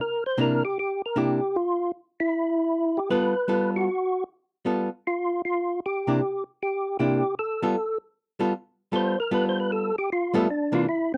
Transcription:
0.01 0.24 A#4 medium
0.26 0.39 C5 medium
0.38 0.61 C3 medium
0.38 0.61 A#3 medium
0.38 0.61 D4 medium
0.38 0.62 E4 medium
0.38 0.63 A#4 medium
0.65 0.78 G4 medium
0.79 1.02 G4 medium
1.06 1.18 A#4 medium
1.16 1.39 C3 soft
1.16 1.39 A#3 medium
1.16 1.39 D4 medium
1.16 1.39 E4 medium
1.16 1.57 G4 medium
1.56 1.92 F4 medium
2.20 2.99 E4 medium
2.97 3.10 G4 medium
3.10 3.33 G3 medium
3.10 3.33 B3 medium
3.10 3.33 F4 medium
3.10 3.34 A4 medium
3.10 3.71 B4 medium
3.48 3.87 G3 medium
3.48 3.87 B3 medium
3.48 3.88 F4 medium
3.48 3.88 A4 medium
3.76 4.24 F#4 medium
4.65 4.88 G3 soft
4.65 4.88 B3 medium
4.65 4.88 F4 medium
4.65 4.89 A4 medium
5.07 5.42 F4 medium
5.45 5.80 F4 medium
5.86 6.44 G4 medium
6.07 6.19 C3 medium
6.07 6.20 A#3 medium
6.07 6.20 D4 medium
6.07 6.20 E4 medium
6.63 6.97 G4 medium
6.99 7.22 C3 medium
6.99 7.22 A#3 medium
6.99 7.22 D4 medium
6.99 7.22 E4 medium
6.99 7.35 G4 medium
7.39 7.98 A4 medium
7.62 7.75 G3 medium
7.62 7.75 B3 medium
7.62 7.75 F4 medium
7.62 7.75 A4 medium
8.39 8.52 G3 medium
8.39 8.52 B3 medium
8.39 8.52 F4 medium
8.39 8.52 A4 medium
8.92 9.15 G3 medium
8.92 9.16 B3 medium
8.92 9.15 F4 medium
8.92 9.16 A4 medium
8.92 9.19 C5 medium
9.20 9.32 A#4 medium
9.31 9.90 G3 medium
9.31 9.91 B3 medium
9.31 9.91 F4 medium
9.31 9.91 A4 medium
9.31 9.45 B4 medium
9.49 9.59 C5 medium
9.60 9.71 B4 medium
9.72 9.96 A4 medium
9.98 10.10 G4 medium
10.12 10.35 F4 medium
10.34 10.46 G3 medium
10.34 10.49 A3 soft
10.34 10.46 B3 medium
10.34 10.47 F4 medium
10.34 10.47 A4 medium
10.50 10.74 D4 medium
10.72 10.85 C3 medium
10.72 10.85 E3 medium
10.72 10.85 A#3 medium
10.72 10.85 D4 medium
10.72 10.87 F4 medium
10.89 11.12 E4 medium
11.14 11.17 C4 medium

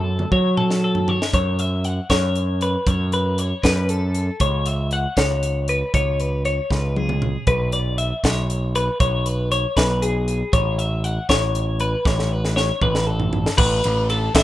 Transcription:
0.00 0.24 F#2 medium
0.00 0.32 A4 medium
0.19 mid tom medium
0.32 1.18 F#3 medium
0.32 0.57 C#5 medium
0.32 kick medium
0.57 0.83 A4 medium
0.57 mid tom medium
0.70 snare medium
0.84 1.09 A4 medium
0.95 floor tom medium
1.08 1.33 C#5 medium
1.08 floor tom medium
1.22 snare medium
1.34 1.99 F#2 medium
1.34 1.60 C#5 medium
1.34 kick medium
1.34 closed hi-hat medium
1.59 1.85 E5 medium
1.59 closed hi-hat soft
1.84 2.10 F#5 medium
1.84 closed hi-hat soft
2.10 2.75 F#2 medium
2.10 2.62 C#5 medium
2.10 kick medium
2.10 snare medium
2.10 closed hi-hat medium
2.35 closed hi-hat soft
2.61 2.87 B4 medium
2.61 closed hi-hat medium
2.87 3.52 F#2 medium
2.87 3.13 C#5 medium
2.87 kick medium
2.87 closed hi-hat medium
3.12 3.39 B4 medium
3.12 closed hi-hat medium
3.38 3.64 C#5 medium
3.38 closed hi-hat medium
3.63 4.29 F#2 medium
3.63 3.90 B4 medium
3.63 kick medium
3.63 snare medium
3.63 closed hi-hat medium
3.89 4.41 A4 medium
3.89 closed hi-hat medium
4.15 closed hi-hat medium
4.40 5.05 C#2 medium
4.40 4.67 C#5 medium
4.40 kick medium
4.40 closed hi-hat medium
4.66 4.92 E5 medium
4.66 closed hi-hat medium
4.91 5.18 F#5 medium
4.91 closed hi-hat medium
5.17 5.82 C#2 medium
5.17 5.69 C#5 medium
5.17 kick medium
5.17 snare medium
5.17 closed hi-hat medium
5.43 closed hi-hat medium
5.68 5.94 B4 medium
5.68 closed hi-hat medium
5.94 6.59 C#2 medium
5.94 6.21 C#5 medium
5.94 kick medium
5.94 closed hi-hat medium
6.20 6.45 B4 medium
6.20 closed hi-hat soft
6.45 6.71 C#5 medium
6.45 closed hi-hat soft
6.71 7.35 C#2 medium
6.71 6.97 B4 medium
6.71 kick medium
6.71 snare soft
6.96 7.47 G#4 medium
6.96 high tom medium
7.09 mid tom medium
7.22 mid tom medium
7.47 8.12 B1 medium
7.47 7.73 B4 medium
7.47 kick medium
7.47 closed hi-hat medium
7.72 7.98 D5 medium
7.72 closed hi-hat medium
7.98 8.24 E5 medium
7.98 closed hi-hat medium
8.24 8.88 B1 medium
8.24 8.75 C#5 medium
8.24 kick medium
8.24 snare medium
8.24 closed hi-hat medium
8.50 closed hi-hat medium
8.75 9.00 B4 medium
8.75 closed hi-hat medium
9.00 9.65 B1 medium
9.00 9.26 C#5 medium
9.00 kick medium
9.00 closed hi-hat medium
9.26 9.51 B4 medium
9.26 closed hi-hat medium
9.52 9.76 C#5 medium
9.52 closed hi-hat medium
9.77 10.42 B1 medium
9.77 10.03 B4 medium
9.77 kick medium
9.77 snare medium
9.77 closed hi-hat medium
10.02 10.53 G#4 medium
10.02 closed hi-hat medium
10.28 closed hi-hat medium
10.53 11.18 A1 medium
10.53 10.79 C#5 medium
10.53 kick medium
10.53 closed hi-hat medium
10.79 11.04 E5 medium
10.79 closed hi-hat medium
11.04 11.29 F#5 medium
11.04 closed hi-hat medium
11.29 11.94 A1 medium
11.29 11.80 C#5 medium
11.29 kick medium
11.29 snare medium
11.29 closed hi-hat medium
11.55 closed hi-hat medium
11.80 12.06 B4 medium
11.80 closed hi-hat soft
12.05 12.70 A1 medium
12.05 12.32 C#5 medium
12.05 kick medium
12.05 snare soft
12.19 snare soft
12.32 12.56 B4 medium
12.45 snare medium
12.56 12.82 C#5 medium
12.56 snare medium
12.81 13.47 A1 medium
12.81 13.07 B4 medium
12.81 kick medium
12.81 mid tom medium
12.95 snare medium
13.07 13.57 A4 medium
13.20 floor tom medium
13.33 floor tom medium
13.46 snare medium
13.58 13.80 A1 loud
13.58 14.09 B4 medium
13.58 kick loud
13.58 crash loud
13.84 14.28 A1 medium
13.84 ride medium
14.10 14.35 A4 medium
14.10 ride medium
14.35 14.43 A1 loud
14.35 14.43 E5 medium
14.35 kick medium
14.35 snare loud
14.35 ride loud

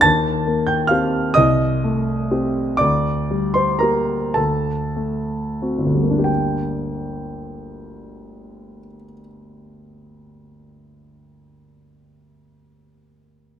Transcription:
0.01 1.32 D#2 medium
0.01 0.64 A5 medium
0.01 0.67 A6 loud
0.47 1.18 A#3 soft
0.67 0.89 G5 medium
0.67 0.90 G6 medium
0.87 1.32 C4 soft
0.87 1.33 G4 soft
0.87 1.32 F5 medium
0.87 1.35 F6 medium
1.34 2.77 C2 medium
1.34 2.76 D#5 medium
1.34 2.79 D#6 loud
1.84 2.61 A3 soft
2.31 2.77 C4 soft
2.31 2.77 G4 soft
2.77 4.33 D2 medium
2.77 3.51 D5 medium
2.77 3.55 D6 medium
3.31 4.15 G3 soft
3.54 3.80 C5 medium
3.54 3.81 C6 medium
3.79 4.33 A#3 soft
3.79 4.33 G4 soft
3.79 4.32 A#4 medium
3.79 4.35 A#5 medium
4.34 5.85 D2 soft
4.34 6.23 A4 medium
4.34 6.26 A5 medium
4.96 6.02 A3 soft
5.62 6.23 C4 soft
5.62 6.23 F#4 soft
5.78 8.79 G1 soft
5.86 8.87 D2 soft
5.94 8.95 G3 soft
6.03 9.04 A#3 soft
6.11 9.11 D4 soft
6.19 9.20 G4 soft
6.24 9.25 G5 medium

